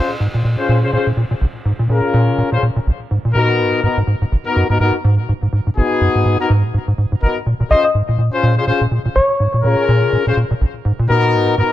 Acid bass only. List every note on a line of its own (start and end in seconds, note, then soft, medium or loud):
0.20 0.28 G#2 medium
0.34 0.43 A#2 medium
0.44 0.56 A#2 medium
0.69 0.84 A#2 loud
0.82 0.91 C3 medium
0.93 0.97 A#2 medium
1.06 1.12 A#2 medium
1.17 1.25 A#2 medium
1.31 1.34 A#2 medium
1.41 1.46 A#1 medium
1.65 1.73 G#2 medium
1.79 1.88 A#2 medium
1.89 2.01 A#2 medium
2.14 2.29 A#2 medium
2.28 2.36 C3 medium
2.38 2.43 A#2 medium
2.52 2.58 A#2 medium
2.62 2.70 A#2 medium
2.76 2.80 A#2 medium
2.87 2.91 A#1 medium
3.11 3.18 G#2 medium
3.25 3.33 A#2 medium
3.35 3.60 A#2 medium
3.59 3.74 G#2 loud
3.73 3.81 A#2 medium
3.83 3.88 G#2 medium
3.97 4.03 G#2 medium
4.07 4.15 G#2 medium
4.21 4.25 G#2 medium
4.32 4.36 G#1 medium
4.56 4.64 F#2 medium
4.69 4.78 G#2 medium
4.80 4.92 G#2 medium
5.04 5.20 G#2 medium
5.18 5.27 A#2 medium
5.29 5.33 G#2 medium
5.42 5.48 G#2 medium
5.52 5.60 G#2 medium
5.67 5.70 G#2 medium
5.77 5.81 G#1 medium
6.01 6.09 F#2 medium
6.15 6.24 G#2 medium
6.25 6.37 G#2 medium
6.50 6.65 G#2 loud
6.63 6.72 A#2 medium
6.74 6.78 G#2 medium
6.88 6.93 G#2 medium
6.98 7.06 G#2 medium
7.12 7.15 G#2 medium
7.22 7.27 G#1 medium
7.46 7.54 A#2 medium
7.60 7.63 A#2 medium
7.70 7.75 A#1 medium
7.95 8.02 G#2 medium
8.08 8.17 A#2 medium
8.18 8.30 A#2 medium
8.43 8.58 A#2 loud
8.57 8.65 C3 medium
8.67 8.72 A#2 medium
8.81 8.87 A#2 medium
8.91 8.99 A#2 medium
9.05 9.09 A#2 medium
9.16 9.20 A#1 medium
9.40 9.47 G#2 medium
9.54 9.62 A#2 medium
9.64 9.76 A#2 medium
9.88 10.03 A#2 medium
10.02 10.11 C3 medium
10.12 10.17 A#2 medium
10.27 10.32 A#2 medium
10.37 10.44 A#2 medium
10.51 10.54 A#2 medium
10.61 10.65 A#1 medium
10.85 10.93 G#2 medium
10.99 11.07 A#2 medium
11.09 11.35 A#2 medium
11.33 11.49 G#2 loud
11.47 11.56 A#2 medium
11.58 11.62 G#2 medium